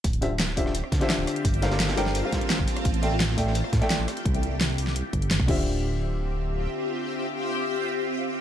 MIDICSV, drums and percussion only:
0, 0, Header, 1, 2, 480
1, 0, Start_track
1, 0, Key_signature, -1, "minor"
1, 0, Tempo, 350877
1, 60, Time_signature, 4, 2, 24, 8
1, 11502, End_track
2, 0, Start_track
2, 0, Title_t, "Drums"
2, 57, Note_on_c, 9, 42, 90
2, 60, Note_off_c, 9, 42, 0
2, 60, Note_on_c, 9, 36, 116
2, 60, Note_on_c, 9, 42, 96
2, 182, Note_off_c, 9, 42, 0
2, 182, Note_on_c, 9, 42, 39
2, 197, Note_off_c, 9, 36, 0
2, 301, Note_off_c, 9, 42, 0
2, 301, Note_on_c, 9, 42, 68
2, 303, Note_off_c, 9, 42, 0
2, 303, Note_on_c, 9, 42, 66
2, 440, Note_off_c, 9, 42, 0
2, 541, Note_on_c, 9, 38, 124
2, 541, Note_on_c, 9, 42, 99
2, 544, Note_off_c, 9, 42, 0
2, 544, Note_on_c, 9, 42, 86
2, 547, Note_off_c, 9, 38, 0
2, 547, Note_on_c, 9, 38, 107
2, 663, Note_off_c, 9, 38, 0
2, 663, Note_on_c, 9, 38, 51
2, 680, Note_off_c, 9, 42, 0
2, 780, Note_on_c, 9, 36, 63
2, 782, Note_on_c, 9, 42, 64
2, 782, Note_on_c, 9, 46, 74
2, 800, Note_off_c, 9, 38, 0
2, 903, Note_on_c, 9, 37, 36
2, 905, Note_on_c, 9, 38, 37
2, 917, Note_off_c, 9, 36, 0
2, 919, Note_off_c, 9, 42, 0
2, 919, Note_off_c, 9, 46, 0
2, 1018, Note_on_c, 9, 42, 88
2, 1022, Note_off_c, 9, 42, 0
2, 1022, Note_on_c, 9, 42, 98
2, 1040, Note_off_c, 9, 37, 0
2, 1041, Note_off_c, 9, 38, 0
2, 1145, Note_on_c, 9, 37, 38
2, 1159, Note_off_c, 9, 42, 0
2, 1260, Note_on_c, 9, 36, 108
2, 1263, Note_on_c, 9, 42, 70
2, 1267, Note_on_c, 9, 38, 42
2, 1271, Note_off_c, 9, 42, 0
2, 1271, Note_on_c, 9, 42, 69
2, 1282, Note_off_c, 9, 37, 0
2, 1380, Note_off_c, 9, 38, 0
2, 1380, Note_on_c, 9, 38, 51
2, 1385, Note_off_c, 9, 42, 0
2, 1385, Note_on_c, 9, 42, 39
2, 1397, Note_off_c, 9, 36, 0
2, 1487, Note_off_c, 9, 38, 0
2, 1487, Note_on_c, 9, 38, 124
2, 1503, Note_off_c, 9, 38, 0
2, 1503, Note_off_c, 9, 42, 0
2, 1503, Note_on_c, 9, 38, 118
2, 1503, Note_on_c, 9, 42, 97
2, 1505, Note_off_c, 9, 42, 0
2, 1505, Note_on_c, 9, 42, 95
2, 1640, Note_off_c, 9, 38, 0
2, 1641, Note_off_c, 9, 42, 0
2, 1742, Note_on_c, 9, 37, 50
2, 1742, Note_on_c, 9, 46, 75
2, 1745, Note_on_c, 9, 42, 70
2, 1864, Note_off_c, 9, 42, 0
2, 1864, Note_on_c, 9, 42, 39
2, 1879, Note_off_c, 9, 37, 0
2, 1879, Note_off_c, 9, 46, 0
2, 1980, Note_on_c, 9, 36, 124
2, 1981, Note_off_c, 9, 42, 0
2, 1981, Note_on_c, 9, 42, 94
2, 1986, Note_off_c, 9, 42, 0
2, 1986, Note_on_c, 9, 42, 96
2, 2104, Note_off_c, 9, 42, 0
2, 2104, Note_on_c, 9, 42, 39
2, 2117, Note_off_c, 9, 36, 0
2, 2222, Note_off_c, 9, 42, 0
2, 2222, Note_on_c, 9, 42, 64
2, 2225, Note_off_c, 9, 42, 0
2, 2225, Note_on_c, 9, 42, 82
2, 2228, Note_on_c, 9, 38, 114
2, 2344, Note_off_c, 9, 38, 0
2, 2344, Note_off_c, 9, 42, 0
2, 2344, Note_on_c, 9, 38, 108
2, 2344, Note_on_c, 9, 42, 75
2, 2459, Note_off_c, 9, 42, 0
2, 2459, Note_on_c, 9, 42, 86
2, 2461, Note_off_c, 9, 38, 0
2, 2461, Note_off_c, 9, 42, 0
2, 2461, Note_on_c, 9, 38, 127
2, 2461, Note_on_c, 9, 42, 95
2, 2468, Note_off_c, 9, 38, 0
2, 2468, Note_on_c, 9, 38, 100
2, 2580, Note_off_c, 9, 38, 0
2, 2580, Note_off_c, 9, 42, 0
2, 2580, Note_on_c, 9, 38, 110
2, 2580, Note_on_c, 9, 42, 80
2, 2699, Note_off_c, 9, 38, 0
2, 2699, Note_on_c, 9, 38, 55
2, 2702, Note_on_c, 9, 46, 74
2, 2703, Note_off_c, 9, 42, 0
2, 2703, Note_on_c, 9, 42, 73
2, 2823, Note_off_c, 9, 38, 0
2, 2823, Note_on_c, 9, 38, 39
2, 2829, Note_off_c, 9, 38, 0
2, 2829, Note_on_c, 9, 38, 36
2, 2838, Note_off_c, 9, 46, 0
2, 2840, Note_off_c, 9, 42, 0
2, 2941, Note_on_c, 9, 42, 98
2, 2949, Note_off_c, 9, 42, 0
2, 2949, Note_on_c, 9, 42, 84
2, 2966, Note_off_c, 9, 38, 0
2, 3086, Note_off_c, 9, 42, 0
2, 3176, Note_on_c, 9, 38, 55
2, 3178, Note_on_c, 9, 42, 65
2, 3180, Note_on_c, 9, 36, 66
2, 3181, Note_off_c, 9, 42, 0
2, 3181, Note_on_c, 9, 42, 69
2, 3303, Note_off_c, 9, 42, 0
2, 3303, Note_on_c, 9, 42, 37
2, 3313, Note_off_c, 9, 38, 0
2, 3317, Note_off_c, 9, 36, 0
2, 3414, Note_on_c, 9, 38, 121
2, 3421, Note_off_c, 9, 38, 0
2, 3421, Note_off_c, 9, 42, 0
2, 3421, Note_on_c, 9, 38, 122
2, 3421, Note_on_c, 9, 42, 92
2, 3426, Note_off_c, 9, 42, 0
2, 3426, Note_on_c, 9, 42, 83
2, 3542, Note_on_c, 9, 36, 109
2, 3543, Note_on_c, 9, 37, 51
2, 3558, Note_off_c, 9, 38, 0
2, 3562, Note_off_c, 9, 42, 0
2, 3658, Note_on_c, 9, 42, 73
2, 3661, Note_on_c, 9, 46, 74
2, 3678, Note_off_c, 9, 36, 0
2, 3680, Note_off_c, 9, 37, 0
2, 3783, Note_off_c, 9, 42, 0
2, 3783, Note_on_c, 9, 37, 52
2, 3783, Note_on_c, 9, 42, 38
2, 3798, Note_off_c, 9, 46, 0
2, 3900, Note_off_c, 9, 42, 0
2, 3900, Note_on_c, 9, 36, 127
2, 3900, Note_on_c, 9, 42, 90
2, 3905, Note_off_c, 9, 42, 0
2, 3905, Note_on_c, 9, 42, 83
2, 3920, Note_off_c, 9, 37, 0
2, 4021, Note_off_c, 9, 42, 0
2, 4021, Note_on_c, 9, 42, 36
2, 4037, Note_off_c, 9, 36, 0
2, 4142, Note_off_c, 9, 42, 0
2, 4142, Note_on_c, 9, 42, 64
2, 4144, Note_off_c, 9, 42, 0
2, 4144, Note_on_c, 9, 42, 65
2, 4281, Note_off_c, 9, 42, 0
2, 4376, Note_on_c, 9, 38, 116
2, 4381, Note_on_c, 9, 42, 89
2, 4382, Note_off_c, 9, 38, 0
2, 4382, Note_off_c, 9, 42, 0
2, 4382, Note_on_c, 9, 38, 127
2, 4382, Note_on_c, 9, 42, 95
2, 4501, Note_off_c, 9, 38, 0
2, 4501, Note_on_c, 9, 38, 49
2, 4518, Note_off_c, 9, 42, 0
2, 4620, Note_on_c, 9, 36, 65
2, 4621, Note_on_c, 9, 46, 77
2, 4629, Note_on_c, 9, 42, 72
2, 4638, Note_off_c, 9, 38, 0
2, 4744, Note_on_c, 9, 37, 34
2, 4750, Note_on_c, 9, 38, 38
2, 4757, Note_off_c, 9, 36, 0
2, 4758, Note_off_c, 9, 46, 0
2, 4765, Note_off_c, 9, 42, 0
2, 4855, Note_on_c, 9, 42, 96
2, 4860, Note_off_c, 9, 42, 0
2, 4860, Note_on_c, 9, 42, 93
2, 4880, Note_off_c, 9, 37, 0
2, 4887, Note_off_c, 9, 38, 0
2, 4983, Note_on_c, 9, 37, 38
2, 4997, Note_off_c, 9, 42, 0
2, 5099, Note_on_c, 9, 38, 43
2, 5100, Note_on_c, 9, 36, 113
2, 5101, Note_on_c, 9, 42, 68
2, 5106, Note_off_c, 9, 42, 0
2, 5106, Note_on_c, 9, 42, 65
2, 5119, Note_off_c, 9, 37, 0
2, 5223, Note_off_c, 9, 38, 0
2, 5223, Note_off_c, 9, 42, 0
2, 5223, Note_on_c, 9, 38, 47
2, 5223, Note_on_c, 9, 42, 35
2, 5237, Note_off_c, 9, 36, 0
2, 5338, Note_off_c, 9, 42, 0
2, 5338, Note_on_c, 9, 42, 91
2, 5340, Note_off_c, 9, 38, 0
2, 5340, Note_off_c, 9, 42, 0
2, 5340, Note_on_c, 9, 38, 125
2, 5340, Note_on_c, 9, 42, 93
2, 5342, Note_off_c, 9, 38, 0
2, 5342, Note_on_c, 9, 38, 122
2, 5477, Note_off_c, 9, 42, 0
2, 5479, Note_off_c, 9, 38, 0
2, 5582, Note_on_c, 9, 37, 50
2, 5582, Note_on_c, 9, 42, 73
2, 5582, Note_on_c, 9, 46, 77
2, 5703, Note_off_c, 9, 42, 0
2, 5703, Note_on_c, 9, 42, 38
2, 5718, Note_off_c, 9, 37, 0
2, 5718, Note_off_c, 9, 46, 0
2, 5820, Note_on_c, 9, 36, 123
2, 5822, Note_off_c, 9, 42, 0
2, 5822, Note_on_c, 9, 42, 86
2, 5944, Note_off_c, 9, 42, 0
2, 5944, Note_on_c, 9, 42, 36
2, 5957, Note_off_c, 9, 36, 0
2, 6061, Note_off_c, 9, 42, 0
2, 6061, Note_on_c, 9, 42, 63
2, 6198, Note_off_c, 9, 42, 0
2, 6303, Note_on_c, 9, 38, 127
2, 6303, Note_on_c, 9, 42, 91
2, 6439, Note_off_c, 9, 38, 0
2, 6439, Note_off_c, 9, 42, 0
2, 6543, Note_on_c, 9, 46, 79
2, 6664, Note_on_c, 9, 38, 38
2, 6680, Note_off_c, 9, 46, 0
2, 6783, Note_on_c, 9, 42, 91
2, 6801, Note_off_c, 9, 38, 0
2, 6920, Note_off_c, 9, 42, 0
2, 7020, Note_on_c, 9, 36, 65
2, 7022, Note_on_c, 9, 42, 65
2, 7143, Note_off_c, 9, 42, 0
2, 7143, Note_on_c, 9, 42, 36
2, 7157, Note_off_c, 9, 36, 0
2, 7262, Note_off_c, 9, 42, 0
2, 7262, Note_on_c, 9, 38, 126
2, 7262, Note_on_c, 9, 42, 90
2, 7382, Note_on_c, 9, 36, 113
2, 7384, Note_on_c, 9, 37, 48
2, 7399, Note_off_c, 9, 38, 0
2, 7399, Note_off_c, 9, 42, 0
2, 7500, Note_off_c, 9, 36, 0
2, 7500, Note_on_c, 9, 36, 112
2, 7503, Note_on_c, 9, 49, 85
2, 7520, Note_off_c, 9, 37, 0
2, 7637, Note_off_c, 9, 36, 0
2, 7639, Note_off_c, 9, 49, 0
2, 11502, End_track
0, 0, End_of_file